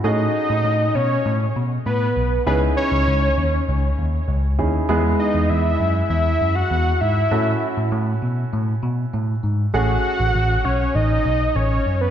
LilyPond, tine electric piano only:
\new Staff \with { instrumentName = "Tine electric piano" } { \clef bass \time 4/4 \key fis \dorian \tempo 4 = 99 a,8 r16 a,16 a,8 b,8 a,8 b,8 a,8 b,,8 | cis,8 r16 cis,16 cis,8 dis,8 cis,8 dis,8 cis,8 dis,8 | e,8 r16 e,16 e,8 fis,8 e,8 fis,8 e,8 gis,8 | a,8 r16 a,16 a,8 b,8 a,8 b,8 a,8 gis,8 |
a,,8 r16 a,,16 a,,8 b,,8 a,,8 b,,8 a,,8 fis,8 | }